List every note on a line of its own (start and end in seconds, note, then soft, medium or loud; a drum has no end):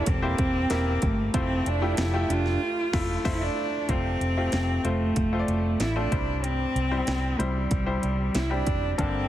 0.00 1.35 A#2 medium
0.00 1.36 E3 medium
0.00 0.23 A#3 medium
0.00 0.23 E4 medium
0.00 0.23 G4 medium
0.00 1.36 A4 medium
0.00 0.22 C5 medium
0.06 0.33 E1 loud
0.06 1.06 C4 medium
0.06 kick medium
0.06 closed hi-hat medium
0.22 0.57 A#3 medium
0.22 0.57 E4 medium
0.22 0.57 G4 medium
0.22 0.57 C5 medium
0.38 0.65 E1 medium
0.38 0.83 C4 medium
0.38 kick loud
0.38 closed hi-hat medium
0.70 0.97 E1 medium
0.70 1.16 A#3 medium
0.70 1.16 E4 medium
0.70 1.17 G4 medium
0.70 1.17 A#4 medium
0.70 snare medium
0.70 closed hi-hat medium
1.02 1.28 G1 medium
1.02 1.35 A3 medium
1.02 kick medium
1.02 closed hi-hat medium
1.34 1.60 F1 medium
1.34 2.26 C3 medium
1.34 1.69 A3 medium
1.34 1.64 C4 medium
1.34 1.69 C4 medium
1.34 1.69 E4 medium
1.34 1.69 F4 medium
1.34 1.69 C5 medium
1.34 kick loud
1.34 closed hi-hat medium
1.66 1.92 F1 medium
1.66 2.01 D4 medium
1.66 closed hi-hat medium
1.81 2.05 A3 medium
1.81 1.97 E4 medium
1.81 2.05 E4 medium
1.81 2.05 F4 medium
1.81 2.05 G4 medium
1.97 2.24 F1 medium
1.97 2.32 E4 medium
1.97 snare loud
1.97 closed hi-hat medium
2.13 2.60 A3 medium
2.13 2.60 F4 medium
2.13 2.60 G4 medium
2.13 2.60 E5 medium
2.29 2.56 F1 medium
2.29 2.60 D4 medium
2.29 3.26 F4 medium
2.29 closed hi-hat medium
2.46 snare soft
2.93 3.15 F1 medium
2.93 3.15 A3 medium
2.93 3.15 E4 medium
2.93 3.15 F4 medium
2.93 kick loud
2.93 snare medium
2.93 crash medium
3.25 3.47 F1 medium
3.25 3.47 A3 medium
3.25 3.47 E4 loud
3.25 3.44 E4 loud
3.25 3.47 F4 medium
3.25 3.47 C5 loud
3.25 kick medium
3.25 snare loud
3.25 crash medium
3.42 3.91 D4 loud
3.89 4.15 F1 medium
3.89 4.81 C3 medium
3.89 4.24 A3 medium
3.89 4.24 C4 medium
3.89 4.86 C4 loud
3.89 4.24 F4 medium
3.89 4.24 C5 medium
3.89 kick medium
3.89 closed hi-hat medium
4.20 4.47 F1 medium
4.20 closed hi-hat medium
4.37 4.72 A3 medium
4.37 4.72 C4 medium
4.37 4.72 F4 medium
4.37 4.72 G4 medium
4.52 4.79 F1 medium
4.52 snare medium
4.52 closed hi-hat medium
4.84 5.11 F1 medium
4.84 5.19 A3 medium
4.84 5.82 A3 medium
4.84 5.19 C4 medium
4.84 5.19 F4 medium
4.84 5.19 C5 medium
4.84 closed hi-hat medium
5.16 5.43 F1 medium
5.16 kick medium
5.16 closed hi-hat medium
5.33 5.79 A3 medium
5.33 5.79 C4 medium
5.33 5.79 F4 medium
5.33 5.39 C5 medium
5.39 5.82 D5 medium
5.48 5.74 F1 medium
5.48 closed hi-hat medium
5.80 6.06 A1 medium
5.80 5.98 E4 medium
5.80 snare medium
5.80 closed hi-hat medium
5.96 6.12 A3 medium
5.96 6.11 C4 medium
5.96 6.45 D4 medium
5.96 6.12 F4 medium
5.96 6.10 C5 medium
6.12 6.64 C2 medium
6.12 7.04 G2 soft
6.12 6.76 G3 medium
6.12 6.76 C4 medium
6.12 6.76 E4 medium
6.12 6.76 C5 medium
6.12 kick medium
6.12 closed hi-hat medium
6.44 7.41 C4 medium
6.44 closed hi-hat medium
6.75 7.02 C2 medium
6.75 closed hi-hat medium
6.91 7.26 G3 medium
6.91 7.26 C4 medium
6.91 7.26 E4 medium
6.91 7.26 C5 medium
7.07 7.34 C2 medium
7.07 snare loud
7.07 closed hi-hat medium
7.39 7.65 C2 medium
7.39 7.74 G3 medium
7.39 8.37 G3 medium
7.39 7.74 C4 medium
7.39 7.74 E4 medium
7.39 7.74 C5 medium
7.39 closed hi-hat medium
7.71 7.97 C2 medium
7.71 kick medium
7.71 closed hi-hat medium
7.86 8.33 G3 medium
7.86 8.33 C4 medium
7.86 8.33 E4 medium
7.86 8.33 C5 medium
8.03 8.29 C2 medium
8.03 closed hi-hat medium
8.35 8.61 C2 medium
8.35 8.51 E4 medium
8.35 snare medium
8.35 closed hi-hat medium
8.50 8.85 G3 medium
8.50 8.85 C4 soft
8.50 8.97 D4 medium
8.50 8.85 E4 medium
8.50 8.85 G4 medium
8.67 8.93 F1 medium
8.67 kick medium
8.67 closed hi-hat medium
8.98 9.25 G1 medium
8.98 9.28 G2 medium
8.98 9.28 D3 medium
8.98 9.28 G3 medium
8.98 9.28 A#3 medium
8.98 9.28 C4 medium
8.98 9.28 D4 medium
8.98 9.28 A4 medium
8.98 kick medium
8.98 closed hi-hat medium